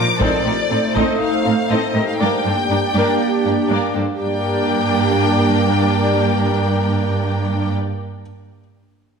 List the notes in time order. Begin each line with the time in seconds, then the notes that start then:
Already playing: F3 F4 A#4 C5 D5 C6 D6
0.20 A2 A3 C4 D#4 A4 C5 D5, taiko
0.45 A2 C4 D#4 G4 A#4
0.70 A2 C4 D#4 A4 C5
0.95 A2 C4 D#4 A4 C5 D#5 D#6, taiko
1.20 F5
1.44 A2 C4 D#4 A4 C5
1.70 A2 C4 D#4 A4 C5 D#5
1.94 A2 C4 D#4 G4 A#4 A#6
2.08 F5
2.20 G2 A#3 D4 G4 A#4 D5 G5
2.45 G2 A#3 D4 A4 C5
2.70 G2 A#3 D4 A#4 D5
2.95 G2 A#3 D4 A#4 D5
3.45 G2 A#3 D4 A#4 D5
3.70 G2 A#3 D4 A#4 D5
3.95 G2 A#3 D4 A4 C5
4.20 G2 A#3 D4 G4 A#4 D5 G5